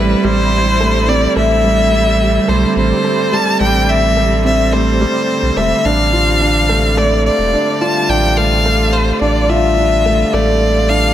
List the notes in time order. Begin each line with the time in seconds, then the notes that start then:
Already playing: A1 D3 G3 A3 C4 E4 B4
0.24 A1 G3 C5
0.80 A3
1.08 C4 D5
1.36 A1 A3 E5
1.64 G3
1.92 G3
2.48 B1 A3 C5
2.76 A1 C4 C5
3.04 A3
3.33 G3 A5
3.60 A1 G3 G5
3.89 E5
4.17 A3
4.45 C4 E5
4.73 A3 C5
5.01 G3
5.43 B1
5.57 E1 A3 E5
5.85 A1 D4 F5
6.13 F4
6.20 F4
6.41 D4
6.69 A3
6.97 A3 D5
7.26 D5
7.39 E1
7.53 D4
7.81 F4 A5
8.09 A1 D4 G5
8.37 A3 F5
8.66 A3
8.93 C5
9.21 A1 D4 D5
9.49 F4 E5
9.78 D4
10.06 A3
10.33 A1 A3 D5
10.89 D4 F5